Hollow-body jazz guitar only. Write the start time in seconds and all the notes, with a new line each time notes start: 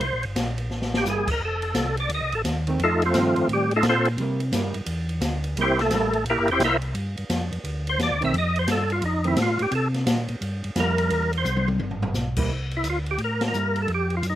1.06 G3 A#3 E4
2.67 D#3 A3 C4
3.15 D#3 A3 C4
4.20 G3 A#3 E4
4.53 G3 A#3 E4
5.58 G3 A#3 E4
5.93 G3 A#3 E4
8.21 D#3 A3 C4
9.25 D#3 A3 C4
10.77 G3 A#3 E4
12.38 G3 A#3 E4
13.54 G3 A#3 E4